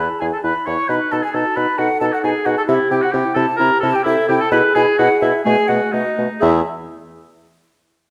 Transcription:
Already playing: B5
0.00 G#4
0.20 E2 E4 G#4 G#5
0.33 A4 A5
0.43 E2 E4 B4 B5
0.66 E2 E4 C#5 C#6
0.89 B2 D#4 B4 B5
1.11 B2 D#4 A4 A5
1.22 G#4 G#5
1.33 B2 D#4 F#4 A4 A5
1.56 B2 D#4 B4 B5
1.78 B2 D#4 F#4 A4 F#5
2.00 B2 D#4 A4 A5
2.12 F#4 F#5
2.23 B2 D#4 G#4 G#5
2.45 B2 D#4 F#4 F#5
2.57 A4 A5
2.67 C3 E4 G4 E5
2.90 C3 E4 G4 G5
3.02 F#4 F#5
3.12 C3 E4 G4 G5
3.34 C3 E4 A4 A5
3.57 C3 E4 G4 A#4 A#5
3.80 C3 E4 A4 A5
3.92 G4 G5
4.03 C3 E4 A4 E5
4.28 C3 E4 G4 G5
4.39 A4 A5
4.51 B2 E4 G#4 B4 B5
4.75 B2 E4 G#4 G#5
4.98 B2 E4 F#4 F#5
5.21 B2 E4 E5
5.44 B2 A3 G#4 G#5
5.68 B2 A3 F#4 F#5
5.92 B2 A3 D#4 F#4 D#5
6.17 B2 A3
6.40 E2 E4 G#4 E5

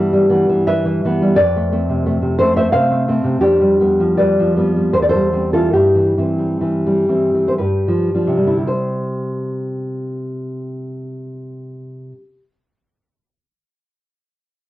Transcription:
Already playing: G2 E3 G3 B3 G4 B4
0.13 G3
0.29 E3 B3
0.49 E3
0.67 G3 B4 E5
0.85 E3
1.05 E3 B3
1.22 G3
1.36 F2 B4 D5
1.56 A3
1.72 A3 C4
1.89 C3
2.06 A3
2.22 C3
2.39 A3 C4 A4 C5
2.56 A3 C5 E5
2.72 C3 C5 F5
2.90 A3
3.08 A3 C4
3.24 C3
3.41 F2 D4 G4
3.61 G3
3.80 G3 B3
4.00 F3
4.17 G3 B4 D5
4.39 F3
4.56 G3 B3
4.76 G3
4.93 E2 C5
5.02 D5
5.09 A4 C5
5.15 G3
5.33 G3 C4
5.53 E3 F4 A4
5.73 G2 E4 G4
5.95 E3
6.18 E3 C4
6.38 G3
6.61 E3
6.86 G3
7.09 E3 C4
7.35 E3
7.48 C5
7.58 G2 G4 B4
7.88 F3
8.15 F3 D4
8.27 C3
8.37 G3
8.43 D3
8.47 E4
8.58 G4
8.67 C5

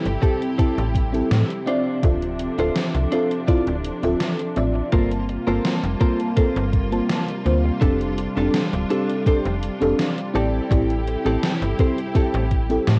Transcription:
Already playing: C3 G3 C4 E4 G4 A4
0.05 G1, closed hi-hat
0.22 C4 E4 G4 A4, kick, closed hi-hat
0.42 closed hi-hat
0.58 C4 E4 G4 A4, kick, closed hi-hat
0.78 A1, closed hi-hat
0.95 kick, closed hi-hat
1.13 C4 E4 G4 A4, muted clean electric guitar stroke, closed hi-hat
1.31 A2, snare, closed hi-hat
1.50 closed hi-hat
1.66 F3 C4 D4 F4 C5 D5 E5, closed hi-hat
2.03 D1 C4 F4 A4 E5, kick, closed hi-hat
2.22 closed hi-hat
2.39 muted clean electric guitar stroke, closed hi-hat
2.58 D1 C4 D4 F4 A4 C5 E5, closed hi-hat
2.76 snare, closed hi-hat
2.95 C2, closed hi-hat
3.12 C4 D4 F4 A4 C5 E5, closed hi-hat
3.31 closed hi-hat
3.47 D1 C4 D4 E4 F4 A4 D5, kick, closed hi-hat
3.67 D1, closed hi-hat
3.84 closed hi-hat
4.03 D1 C4 F4 A4 E5, muted clean electric guitar stroke, closed hi-hat
4.20 snare, closed hi-hat
4.39 closed hi-hat
4.56 A1 C4 F4 D5 E5, closed hi-hat
4.75 muted clean electric guitar stroke
4.92 G1 G3 A#3 C4 F4 A4 A#4 C5 A5, kick, closed hi-hat
5.12 closed hi-hat
5.29 muted clean electric guitar stroke, closed hi-hat
5.47 G1 A#3 C4 F4 A4 A#4 C5 A5, closed hi-hat
5.65 snare, closed hi-hat
5.84 F1, closed hi-hat
6.00 A#3 C4 F4 A4 A#4 C5 A5, kick, closed hi-hat
6.20 closed hi-hat
6.36 A#3 C4 F4 A4 A#4 C5, kick, closed hi-hat
6.56 G1, closed hi-hat
6.73 kick, closed hi-hat
6.91 A#3 C4 F4 A5, muted clean electric guitar stroke, closed hi-hat
7.10 snare, closed hi-hat
7.28 closed hi-hat
7.45 D2 A#3 C4 F4 C5, closed hi-hat
7.65 muted clean electric guitar stroke
7.81 F1 C4 D4 G4 A4, kick, closed hi-hat
8.01 closed hi-hat
8.18 muted clean electric guitar stroke, closed hi-hat
8.36 F1 C4 D4 G4 A4, closed hi-hat
8.54 snare, closed hi-hat
8.73 D1, closed hi-hat
8.90 C4 D4 G4 A4, closed hi-hat
9.09 closed hi-hat
9.25 F1 C4 D4 G4 A4 C5, kick, closed hi-hat
9.45 F1, closed hi-hat
9.63 closed hi-hat
9.80 F1 C4 D4 G4 A4, muted clean electric guitar stroke, closed hi-hat
9.99 snare, closed hi-hat
10.18 closed hi-hat
10.34 A1 C4 E4 G4 A4 D5, closed hi-hat
10.69 A1 C4 E4 G4 A4, kick, closed hi-hat
10.90 closed hi-hat
11.08 muted clean electric guitar stroke, closed hi-hat
11.25 A1 C4 E4 G4 A4, closed hi-hat
11.43 snare, closed hi-hat
11.62 G1, closed hi-hat
11.78 C4 E4 G4 A4 C5, kick, closed hi-hat
11.98 closed hi-hat
12.14 C4 E4 G4 A4, kick, closed hi-hat
12.34 A1, closed hi-hat
12.51 kick, closed hi-hat
12.70 C4 E4 G4 A4, muted clean electric guitar stroke, closed hi-hat
12.87 A2, snare, closed hi-hat

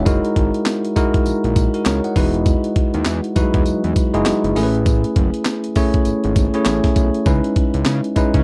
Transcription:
Already playing: C#5 E5
0.05 F#1 G#3 D#4 E4 F#4 A#4, kick, closed hi-hat, tambourine
0.25 closed hi-hat
0.36 G#1, kick, closed hi-hat
0.54 closed hi-hat
0.66 snare, clap, closed hi-hat, tambourine
0.85 closed hi-hat
0.96 G#3 D#4 E4 F#4 A#4, kick, closed hi-hat, tambourine
1.14 kick, closed hi-hat
1.26 A#1, closed hi-hat, tambourine
1.44 A#1, closed hi-hat
1.56 kick, closed hi-hat, tambourine
1.74 F#4 A#4, closed hi-hat
1.85 C#2 A#4 C#5, snare, clap, closed hi-hat, tambourine
2.04 D#5 F#5, closed hi-hat
2.16 E1 G#3 D#4 E4 F#4 B4, kick, open hi-hat, tambourine
2.34 closed hi-hat
2.46 kick, closed hi-hat, tambourine
2.64 closed hi-hat
2.76 kick, closed hi-hat
2.94 D#2, closed hi-hat
3.05 E2, snare, clap, closed hi-hat, tambourine
3.24 closed hi-hat
3.36 E2 F#3 D#4 E4 F#4 B4, kick, closed hi-hat, tambourine
3.42 G#3
3.54 E2, kick, closed hi-hat
3.66 E2, closed hi-hat, tambourine
3.84 E2, closed hi-hat
3.96 kick, closed hi-hat, tambourine
4.14 F#1 G#3 D#4 E4 F#4 G#4, closed hi-hat
4.25 F#1, snare, clap, closed hi-hat, tambourine
4.44 F#1, closed hi-hat
4.56 A1 A3 C#4 E4 G#4 A#4, open hi-hat, tambourine
4.63 B4
4.75 closed hi-hat
4.86 kick, closed hi-hat, tambourine
5.04 closed hi-hat
5.16 F#1, kick, closed hi-hat
5.34 closed hi-hat
5.45 snare, clap, closed hi-hat, tambourine
5.64 closed hi-hat
5.75 A3 C#4 E4 G#4 C#5, kick, open hi-hat, tambourine
5.94 kick, closed hi-hat
6.05 G#1, closed hi-hat, tambourine
6.24 G#1, closed hi-hat
6.36 kick, closed hi-hat, tambourine
6.54 A3 C#4 E4 G#4 C#5, closed hi-hat
6.65 A1, snare, clap, closed hi-hat, tambourine
6.84 kick, snare, closed hi-hat
6.96 B1, kick, closed hi-hat, tambourine
7.14 closed hi-hat
7.26 C#2 G#3 C#4 D#4 E4 B4, kick, closed hi-hat, tambourine
7.44 closed hi-hat
7.56 kick, closed hi-hat
7.74 C#2, closed hi-hat
7.85 C#3, snare, clap, closed hi-hat, tambourine
8.04 closed hi-hat
8.16 C#3 G#3 C#4 D#4 E4 B4, kick, closed hi-hat, tambourine
8.34 C#3, kick, closed hi-hat

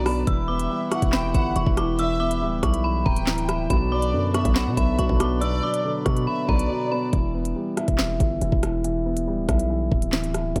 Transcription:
Already playing: B1 B2 D3 F#3 B3 D4 B4 D5
0.06 B3 B5, cross-stick, open hi-hat
0.27 E1 E3 G3 E4 E6, kick, closed hi-hat
0.48 B3 E5 D6
0.59 closed hi-hat
0.70 G3
0.91 E4 F#5 C#6, cross-stick, closed hi-hat
1.02 E1, kick, closed hi-hat
1.12 E3 G5 B5, snare, clap
1.34 G1 F#5 B5, kick, closed hi-hat
1.56 E1 E3 C#6, closed hi-hat
1.66 E1, kick
1.77 E4 D6, cross-stick, closed hi-hat
1.99 E3 E5 E6, closed hi-hat
2.20 B3 D6
2.31 closed hi-hat
2.41 D1 G3
2.63 B1 E4 C#6, kick, cross-stick, closed hi-hat
2.74 closed hi-hat
2.84 E3 B5
3.05 D1 G5 A#5, kick
3.16 closed hi-hat
3.27 E3, snare, clap
3.38 closed hi-hat
3.49 E4 B5, cross-stick, closed hi-hat
3.70 B1 B2 F#3 D4 B4 B5, kick, closed hi-hat
3.91 F#3 D5 D6
4.02 closed hi-hat
4.13 F#2 D3
4.34 B3 E5 C#6, cross-stick, closed hi-hat
4.45 B1, kick, closed hi-hat
4.55 B2 F#5 B5, snare, clap
4.67 B2
4.77 B1 E5 B5, kick, closed hi-hat
4.99 B1 B2 C#6, closed hi-hat
5.09 B1, kick
5.20 B3 D6, cross-stick, closed hi-hat
5.41 B2 D5 E6, closed hi-hat
5.63 F#3 D6
5.74 closed hi-hat
5.84 D3
6.06 B2 B3 C#6, kick, cross-stick, closed hi-hat
6.17 closed hi-hat
6.27 B2 E5 B5
6.49 B1 D5 A#5, kick
6.59 closed hi-hat
6.70 B2
6.91 B3 B5
7.13 E1 E3, kick, closed hi-hat
7.34 B3
7.45 closed hi-hat
7.56 G3
7.77 E4, cross-stick, closed hi-hat
7.88 E1, kick, closed hi-hat
7.98 E3, snare, clap
8.20 G1, kick, closed hi-hat
8.41 E1 E3, closed hi-hat
8.52 E1, kick
8.63 E4, cross-stick, closed hi-hat
8.84 E3, closed hi-hat
9.06 B3
9.17 closed hi-hat
9.27 D1 G3
9.49 B1 E4, kick, cross-stick, closed hi-hat
9.59 closed hi-hat
9.70 E3
9.92 D1, kick
10.02 closed hi-hat
10.12 E3, snare, clap
10.24 closed hi-hat
10.34 E4, cross-stick, closed hi-hat
10.56 B1 B2, kick, closed hi-hat

